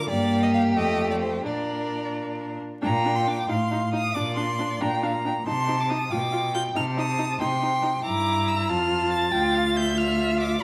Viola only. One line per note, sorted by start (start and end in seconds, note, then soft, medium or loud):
0.09 0.78 A#3 medium
0.76 1.44 A3 medium
1.45 2.59 D4 medium
2.82 2.90 D4 medium
3.05 3.13 D4 medium
3.27 3.35 D4 medium
3.48 3.56 D#4 medium
3.71 3.79 D#4 medium
3.93 4.01 D#4 medium
4.15 4.23 D4 medium
4.36 4.44 D4 medium
4.59 4.67 D4 medium
4.81 4.89 D4 medium
5.03 5.11 D4 medium
5.25 5.33 D4 medium
5.47 5.55 D#4 medium
5.68 5.76 D#4 medium
5.90 5.98 D#4 medium
6.11 6.19 F4 medium
6.32 6.40 F4 medium
6.54 6.62 F4 medium
6.75 6.83 D#4 medium
6.97 7.05 D#4 medium
7.19 7.27 D#4 medium
7.41 7.49 D#4 medium
7.62 7.70 D#4 medium
7.82 7.90 D#4 medium
8.04 8.71 E4 medium
8.70 9.33 F4 medium
9.33 9.96 F4 medium
9.97 10.61 F4 medium